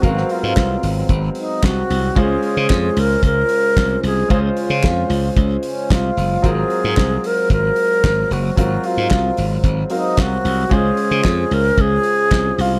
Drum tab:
HH |x-o-x-o-x-o-x-o-|x-o-x-o-x-o-x-o-|x-o-x-o-x-o-x-o-|x-o-x-o-x-o-x-o-|
CP |----x-------x---|----x-------x---|----x-------x---|----x-------x---|
SD |-o--o-------o---|----o-------o---|----o-------o---|----o-------o---|
BD |o---o---o---o---|o---o---o---o---|o---o---o---o---|o---o---o---o---|

HH |x-o-x-o-x-o-x-o-|x-o-x-o-x-o-x-o-|
CP |----x-------x---|----x-------x---|
SD |----o-------o---|----o-------o---|
BD |o---o---o---o---|o---o---o---o---|